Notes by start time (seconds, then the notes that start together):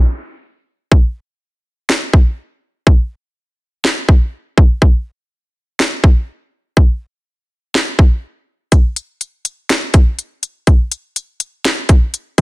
0.92 kick
1.90 snare
2.13 kick
2.87 kick
3.85 snare
4.09 kick
4.58 kick
4.82 kick
5.80 snare
6.04 kick
6.77 kick
7.75 snare
7.99 kick
8.72 kick, closed hi-hat
8.96 closed hi-hat
9.21 closed hi-hat
9.45 closed hi-hat
9.70 snare, closed hi-hat
9.94 kick, closed hi-hat
10.19 closed hi-hat
10.43 closed hi-hat
10.67 kick, closed hi-hat
10.91 closed hi-hat
11.16 closed hi-hat
11.40 closed hi-hat
11.65 snare, closed hi-hat
11.89 kick, closed hi-hat
12.14 closed hi-hat